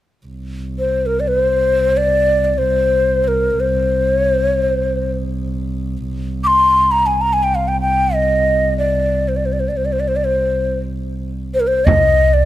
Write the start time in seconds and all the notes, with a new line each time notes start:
0.27 C2
0.79 C5
1.06 A#4
1.20 D5
1.28 B4
1.39 C5
1.97 D5
2.44 D5
2.54 D5
2.58 C5
3.24 A#4 C5
3.60 C5
4.15 C#5
4.30 C5
4.46 C#5
4.61 C5
6.08 C2
6.44 C6 D6
6.91 A#5
7.06 G#5
7.21 A#5
7.33 G#5
7.43 G5
7.55 F5
7.68 G5
7.81 G5
8.15 D#5
8.78 D5
9.28 C5
9.36 D5
9.46 C5
9.53 D5
9.60 C5
9.68 D5
9.77 C5
9.85 D5
9.92 C5
10.00 D5
10.08 C5
10.16 D5
10.24 C5
11.54 C5
11.60 A#4
11.67 C5
11.85 C2 D#5, frame drum, darbuka dum
12.21 darbuka ka
12.34 D5